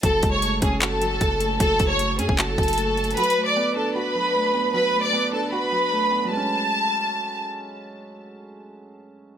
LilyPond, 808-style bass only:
\new Staff \with { instrumentName = "808-style bass" } { \clef bass \time 4/4 \key fis \minor \tempo 4 = 153 fis,,8 fis,,4 fis,,4. fis,,4 | fis,,8 fis,,4 fis,16 fis,,8. fis,,4. | r1 | r1 |
r1 | r1 | }